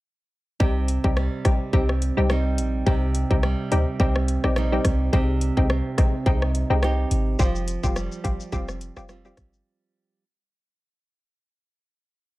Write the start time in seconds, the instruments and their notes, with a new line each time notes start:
0.60 808-style bass C2, nylon-string guitar C3, synth stab G3 C4 D#4 G4, kick
0.88 closed hi-hat
1.04 808-style bass C2, synth stab G3 C4 D#4 G4, kick
1.17 nylon-string guitar G3, cross-stick
1.45 808-style bass A#1, synth stab G3 C4 D#4 G4, kick, cross-stick, closed hi-hat
1.73 808-style bass C2, synth stab G3 C4 D#4 G4, nylon-string guitar C4, kick
1.89 cross-stick
2.02 closed hi-hat
2.17 808-style bass C2, synth stab G3 C4 D#4 G4
2.30 nylon-string guitar G3 C4 D#4, cross-stick
2.58 808-style bass A#1, closed hi-hat
2.86 808-style bass C2, nylon-string guitar C3, synth stab G3 C4 D#4 G4, kick
3.15 closed hi-hat
3.30 808-style bass C2, synth stab G3 C4 D#4 G4, kick
3.43 nylon-string guitar G3, cross-stick
3.71 808-style bass D2, synth stab G3 C4 D#4 G4, closed hi-hat
4.00 808-style bass C2, synth stab G3 C4 D#4 G4, nylon-string guitar C4, kick
4.16 cross-stick
4.28 closed hi-hat
4.44 808-style bass A#1, synth stab G3 C4 D#4 G4, cross-stick
4.56 nylon-string guitar G3 C4 D#4, cross-stick
4.72 synth stab G3 C4 D#4 G4
4.85 808-style bass C2, kick, cross-stick, closed hi-hat
5.13 808-style bass C2, nylon-string guitar C3, synth stab G#3 C4 D#4 G4, kick
5.41 closed hi-hat
5.57 808-style bass C2, synth stab G#3 C4 D#4 G4, kick
5.70 nylon-string guitar C4, cross-stick
5.98 808-style bass A#1, synth stab G#3 C4 D#4 G4, kick, cross-stick, closed hi-hat
6.26 808-style bass C2, synth stab G#3 C4 D#4 G4, nylon-string guitar D#4, kick
6.42 cross-stick
6.55 closed hi-hat
6.70 808-style bass C2, synth stab G#3 C4 D#4 G4
6.83 nylon-string guitar C4 D#4 G4, cross-stick
7.11 808-style bass G#1, closed hi-hat
7.39 808-style bass F1, nylon-string guitar F3, synth stab G3 C4 F4 G4, kick, shaker
7.55 shaker
7.68 closed hi-hat, shaker
7.83 808-style bass F1, synth stab G3 C4 F4 G4, kick, shaker
7.96 nylon-string guitar G3, cross-stick, shaker
8.12 shaker
8.24 808-style bass G1, synth stab G3 C4 F4 G4, kick, closed hi-hat, shaker
8.40 shaker
8.52 808-style bass F1, synth stab G3 C4 F4 G4, nylon-string guitar C4, kick, shaker
8.69 cross-stick, shaker
8.81 closed hi-hat, shaker
8.96 808-style bass F1, synth stab G3 C4 F4 G4, cross-stick, shaker
9.09 nylon-string guitar G3 C4 F4, cross-stick, shaker
9.25 synth stab G3 C4 F4 G4, shaker
9.37 808-style bass G1, kick, cross-stick, closed hi-hat, shaker
9.53 shaker